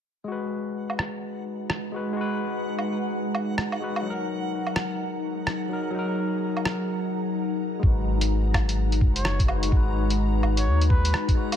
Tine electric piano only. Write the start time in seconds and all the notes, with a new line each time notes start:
0.24 G#3 F#4
0.32 B4
1.92 G#3 F#4
1.96 B4
2.13 G#3 F#4
2.21 B4
3.80 G#3 F#4 B4
4.02 F#3
4.07 D#4 A#4
5.69 F#3 D#4
5.73 A#4
5.91 F#3 D#4
5.99 A#4
7.79 G#3 F#4
7.87 B4
9.46 G#3 F#4
9.50 B4
9.69 G#3
9.73 F#4
9.77 B4
11.35 G#3 F#4
11.39 B4